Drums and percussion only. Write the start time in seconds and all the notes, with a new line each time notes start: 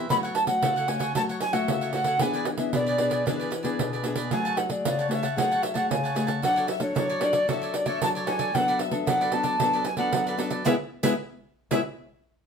0.10 pandeiro
0.24 pandeiro
0.35 pandeiro
0.47 pandeiro
0.63 pandeiro
0.77 pandeiro
0.88 pandeiro
1.00 pandeiro
1.15 pandeiro
1.29 pandeiro
1.40 pandeiro
1.53 pandeiro
1.68 pandeiro
1.82 pandeiro
1.93 pandeiro
2.04 pandeiro
2.19 pandeiro
2.33 pandeiro
2.45 pandeiro
2.58 pandeiro
2.73 pandeiro
2.87 pandeiro
2.98 pandeiro
3.11 pandeiro
3.27 pandeiro
3.41 pandeiro
3.52 pandeiro
3.65 pandeiro
3.79 pandeiro
3.93 pandeiro
4.04 pandeiro
4.16 pandeiro
4.31 pandeiro
4.46 pandeiro
4.57 pandeiro
4.70 pandeiro
4.85 pandeiro
4.99 pandeiro
5.11 pandeiro
5.23 pandeiro
5.38 pandeiro
5.52 pandeiro
5.63 pandeiro
5.75 pandeiro
5.91 pandeiro
6.05 pandeiro
6.16 pandeiro
6.28 pandeiro
6.43 pandeiro
6.57 pandeiro
6.68 pandeiro
6.80 pandeiro
6.96 pandeiro
7.10 pandeiro
7.21 pandeiro
7.33 pandeiro
7.49 pandeiro
7.63 pandeiro
7.74 pandeiro
7.86 pandeiro
8.02 pandeiro
8.16 pandeiro
8.27 pandeiro
8.39 pandeiro
8.55 pandeiro
8.69 pandeiro
8.79 pandeiro
8.91 pandeiro
9.07 pandeiro
9.22 pandeiro
9.32 pandeiro
9.44 pandeiro
9.60 pandeiro
9.74 pandeiro
9.84 pandeiro
9.97 pandeiro
10.12 pandeiro
10.27 pandeiro
10.39 pandeiro
10.51 pandeiro
10.66 pandeiro
11.03 pandeiro
11.71 pandeiro